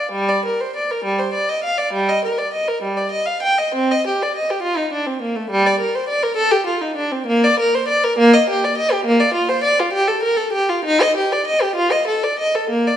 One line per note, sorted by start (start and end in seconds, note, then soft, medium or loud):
0.00 0.11 D5 soft
0.12 0.27 G3 medium
0.29 0.44 D5 medium
0.45 0.59 A#4 medium
0.61 0.75 C5 medium
0.76 0.89 D5 medium
0.91 1.05 A#4 medium
1.04 1.19 G3 medium
1.19 1.34 C5 medium
1.34 1.48 D5 medium
1.49 1.64 D#5 medium
1.64 1.78 F5 medium
1.78 1.93 D5 medium
1.93 2.08 G3 medium
2.10 2.23 D#5 medium
2.25 2.38 A#4 medium
2.38 2.53 D5 medium
2.54 2.68 D#5 medium
2.68 2.82 A#4 medium
2.83 2.97 G3 medium
2.97 3.12 D5 medium
3.11 3.27 D#5 medium
3.26 3.42 F5 medium
3.42 3.58 G5 medium
3.58 3.74 D#5 medium
3.75 3.90 C4 medium
3.91 4.06 D#5 medium
4.07 4.21 G4 medium
4.22 4.36 D5 medium
4.36 4.50 D#5 medium
4.50 4.64 G4 medium
4.63 4.77 F4 medium
4.77 4.92 D#4 medium
4.93 5.07 D4 medium
5.07 5.22 C4 medium
5.22 5.36 A#3 medium
5.36 5.51 A3 medium
5.50 5.65 G3 loud
5.66 5.81 D5 medium
5.80 5.95 A#4 medium
5.95 6.10 C5 medium
6.09 6.23 D5 medium
6.23 6.38 A#4 medium
6.37 6.52 A4 loud
6.51 6.67 G4 medium
6.66 6.82 F4 medium
6.82 6.97 D#4 medium
6.96 7.12 D4 medium
7.12 7.28 C4 medium
7.27 7.42 A#3 loud
7.44 7.59 D5 medium
7.60 7.74 A#4 medium
7.75 7.89 C5 medium
7.88 8.03 D5 medium
8.04 8.18 A#4 medium
8.18 8.33 A#3 loud
8.34 8.48 D#5 medium
8.50 8.63 G4 medium
8.64 8.78 D5 medium
8.78 8.91 D#5 medium
8.92 9.06 G4 medium
9.05 9.20 A#3 loud
9.20 9.35 D5 medium
9.34 9.49 F4 medium
9.49 9.64 C5 medium
9.64 9.78 D5 medium
9.80 9.94 F4 medium
9.93 10.08 G4 loud
10.08 10.23 A4 medium
10.23 10.38 A#4 medium
10.37 10.53 A4 medium
10.53 10.68 G4 medium
10.69 10.85 F4 medium
10.85 11.00 D#4 loud
11.02 11.16 D#5 medium
11.17 11.31 G4 medium
11.32 11.47 D5 medium
11.47 11.61 D#5 medium
11.62 11.77 G4 medium
11.75 11.91 F4 medium
11.92 12.07 D#5 medium
12.08 12.23 A4 medium
12.23 12.39 D5 medium
12.39 12.54 D#5 medium
12.55 12.70 A4 medium
12.70 12.85 A#3 medium
12.87 12.97 D5 medium